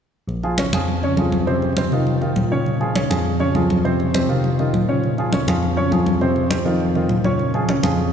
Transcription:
0.28 A#1, high conga
0.43 F3 F4 G#4, high conga
0.58 C#3 C#4 C#5, high conga
0.73 F2 F3 F4 G#4, high conga
0.88 high conga
1.03 C#3 C#4 C#5, high conga
1.17 F2 F3 F4 G#4, high conga
1.32 high conga
1.47 C3 C4 C5, high conga
1.62 high conga
1.77 C3 C4 C5, high conga
1.91 C3 D#3 D#4 F4, high conga
2.07 high conga
2.21 D#3 D#4 F4, high conga
2.36 A#2, high conga
2.51 C#3 C#4 C#5
2.66 high conga
2.80 F3 F4 G#4, high conga
2.95 C#3 C#4 C#5, high conga
3.09 F2 F3 F4 G#4, high conga
3.25 high conga
3.39 C#3 C#4 C#5, high conga
3.54 F2 F3 F4 G#4, high conga
3.70 high conga
3.84 C3 C4 C5, high conga
4.00 high conga
4.14 C3 C4 C5, high conga
4.29 C3 D#3 D#4 F4, high conga
4.44 high conga
4.59 D#3 D#4 F4, high conga
4.73 A#2, high conga
4.89 C#3 C#4 C#5
5.04 high conga
5.18 F3 F4 G#4, high conga
5.33 C#3 C#4 C#5, high conga
5.47 F2 F3 F4 G#4, high conga
5.63 high conga
5.76 C#3 C#4 C#5, high conga
5.91 F2 F3 F4 G#4, high conga
6.06 high conga
6.21 C3 C4 C5, high conga
6.36 high conga
6.50 C3 C4 C5, high conga
6.65 F2 D#3 D#4 F4, high conga
6.80 high conga
6.95 D#3 D#4 F4, high conga
7.09 A#2, high conga
7.24 C#3 C#4 C#5, high conga
7.39 high conga
7.54 F3 F4 G#4, high conga
7.69 C#3 C#4 C#5, high conga
7.83 F2 F3 F4 G#4, high conga
7.98 high conga

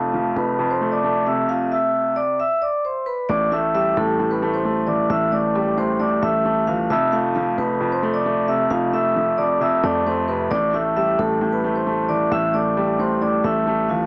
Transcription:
Already playing: F1 F2 A3 F4 F5
0.13 F3 F4 F5
0.36 F1 F2 B4 B5
0.59 F2
0.70 C5 C6
0.81 A3
0.92 D5 D6
1.04 A3
1.26 C3 E5 E6
1.49 F4 F5
1.72 E5 E6
2.16 D5 D6
2.40 E5 E6
2.62 D5 D6
2.85 C5 C6
3.06 B4 B5
3.29 A1 A2 D5 D6
3.52 A3 E5 E6
3.74 G3 E5 E6
3.97 A1 A2 A4 A5
4.20 A2
4.31 B4 B5
4.42 A3
4.54 C5 C6
4.65 A3
4.87 E3 D5 D6
5.10 A1 A2 E5 E6
5.32 A3 D5 D6
5.55 G3
5.77 A2 C5 C6
6.00 A2 D5 D6
6.22 A1 A3 E5 E6
6.45 A3
6.67 E3 F4 F5
6.90 F1 F2 E5 E6
7.12 A3 F4 F5
7.35 F3 F4 F5
7.58 F1 F2 B4 B5
7.81 F2
7.92 C5 C6
8.03 A3
8.14 D5 D6
8.26 A3
8.48 C3 E5 E6
8.71 F1 F2 F4 F5
8.93 A3 E5 E6
9.16 F3
9.38 F2 D5 D6
9.61 F2 E5 E6
9.84 F2 A3 D5 D6
10.06 A3 C5 C6
10.28 C3 B4 B5
10.51 A1 A2 D5 D6
10.74 A3 E5 E6
10.96 G3 E5 E6
11.19 A1 A2 A4 A5
11.41 A2
11.52 B4 B5
11.64 A3
11.75 C5 C6
11.87 A3
12.09 E3 D5 D6
12.31 A1 A2 E5 E6
12.54 A3 D5 D6
12.77 G3
12.99 A2 C5 C6
13.22 A2 D5 D6
13.44 A1 A3 E5 E6
13.67 A3
13.89 E3 F4 F5

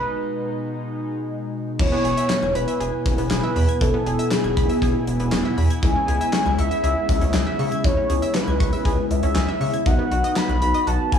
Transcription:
Already playing: B2 G#3 D#4 B4
1.79 E1 B2 E3 B3 E4 C#5 G#5, kick, crash
1.92 B3
2.05 E1 G#4, closed hi-hat
2.17 E5, closed hi-hat
2.30 B5, snare, clap, closed hi-hat
2.42 E1 G#6
2.55 E1 B4 B5, closed hi-hat
2.68 E5, closed hi-hat
2.80 E1 G#4, closed hi-hat
3.06 E1, kick, closed hi-hat
3.18 E1 B3, closed hi-hat
3.31 E1 G#4 B4, snare, clap, closed hi-hat
3.43 E5
3.56 E2 B5, open hi-hat
3.69 G#6, closed hi-hat
3.81 E1 E3 A4, kick, closed hi-hat
3.94 B3
4.06 E1 G#4, closed hi-hat
4.19 E5, closed hi-hat
4.31 G#4 B5, snare, clap, closed hi-hat
4.44 E1 G#6
4.57 E1 B5, kick, closed hi-hat
4.69 E5, closed hi-hat
4.82 E1 G#4, kick, closed hi-hat
5.07 E1, closed hi-hat
5.20 E1 B3, closed hi-hat
5.32 E1 G#4, snare, clap, closed hi-hat
5.45 E5
5.58 E2 B5, open hi-hat
5.70 G#6, closed hi-hat
5.83 C#2 C#3 E3 G#3 C#4 E4 G#4 G#5, kick, closed hi-hat
5.96 C#4
6.08 C#2 G#4, closed hi-hat
6.21 E5, closed hi-hat
6.33 C#6, snare, clap, closed hi-hat
6.46 C#2 G#6
6.58 C#2 E5 C#6, closed hi-hat
6.71 E5, closed hi-hat
6.84 C#2 G#4, closed hi-hat
7.09 C#2, kick, closed hi-hat
7.21 C#2 C#4, closed hi-hat
7.34 C#2 G#4 E5, snare, clap, closed hi-hat
7.47 E5
7.59 C#3 C#6, open hi-hat
7.72 G#6, closed hi-hat
7.84 C#2 E3 C#5, kick, closed hi-hat
7.97 C#4
8.10 C#2 G#4, closed hi-hat
8.22 E5, closed hi-hat
8.35 B4 C#6, snare, clap, closed hi-hat
8.47 C#2 G#6
8.60 C#2 C#6, kick, closed hi-hat
8.73 E5, closed hi-hat
8.85 C#2 G#4, kick, closed hi-hat
9.10 C#2 E5, closed hi-hat
9.23 C#2 C#4, closed hi-hat
9.35 C#2 G#4, snare, clap, closed hi-hat
9.48 E5
9.61 C#3 C#6, open hi-hat
9.74 G#6, closed hi-hat
9.86 B1 D#3 B3 D#4 F#4 B4 F#5, kick, closed hi-hat
9.99 B3
10.11 B1 F#4, closed hi-hat
10.24 D#5, closed hi-hat
10.36 B5, snare, clap, closed hi-hat
10.49 B1 F#6
10.62 B1 B5, closed hi-hat
10.74 D#5, closed hi-hat
10.87 B1 F#4 A5, closed hi-hat
11.12 B1 G#5, kick, closed hi-hat

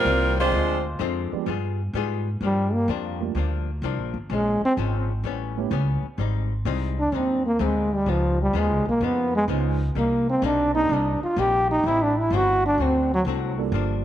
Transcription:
Already playing: C3 G3 A#3 C4 F4 A#4
0.05 C2 D#3 G3 C4 F4
0.38 F3 G#3 C4 D4 F4 C5
0.52 D2 D3 G#3 C4 F4
0.99 F2 D3 G#3 C4 F4
1.32 F3 G#3 B3 D4 G4, muted upright bass stroke
1.46 G2 G3 B3 F4 G#4
1.93 G#2 G3 B3 F4 G#4
2.41 G2 F3 A#3 D4
2.45 G3
2.74 A#3
2.88 F2 G2 F3 A#3 D4
3.20 G3 A3 A#3 D4 F4
3.35 D2 G2 F3 A#3 D4
3.82 C2 G2 F3 A#3 D4
3.98 A#1
4.14 G1
4.30 A#1 A#2 F3 G#3 C#4
4.62 C4, muted upright bass stroke
4.77 G#1 A#2 F3 G#3 C#4
5.23 A1 A2 G3 B3 C#4
5.57 A3 B3 C#4 E4 G4
5.71 C#2 A2 G3 B3 C#4
6.03 muted upright bass stroke
6.18 G#1 G#2 G3 C4 D#4
6.65 C2 G#2 G3 C4 D#4
7.00 D4
7.12 D#2 G#2 G3 C4 D#4
7.46 A#3
7.59 D2 G#2 G3 G#3 C4 D#4
7.95 G3
8.06 C#2 C#3 F3 B3 D#4
8.42 G3
8.53 D#2 C#3 F3 B3 D#4
8.58 G#3
8.70 C#2
8.85 B1 A#3
9.00 F2 C#3 F3 B3 D#4
9.05 B3
9.36 G#3
9.48 C#2 C#3 F3 G#3 B3 C#4 D#4 F4
9.95 C2 C3 G3 A#3 D#4
10.30 C4
10.42 B1 C3 G3 A#3 D4 D#4
10.75 A#3 C4 D4 D#4 G4
10.89 C2 C3 G3 A#3 D4
10.94 D#4
11.21 F4, muted upright bass stroke
11.36 A#1 C3 G3 A#3 D#4 G4
11.71 D#4
11.84 A1 A2 G3 C4 E4
11.88 E4
12.03 D4
12.19 E4
12.30 G1 A2 G3 C4 E4
12.36 F#4
12.66 D4
12.78 D2 D3 A3 C4
12.82 C4 F#4
13.14 F#3
13.25 C2 D3 A3 C4
13.29 F#4
13.58 G3 A#3 D4 F4 A4
13.72 G1 G2 F3 A#3 D4

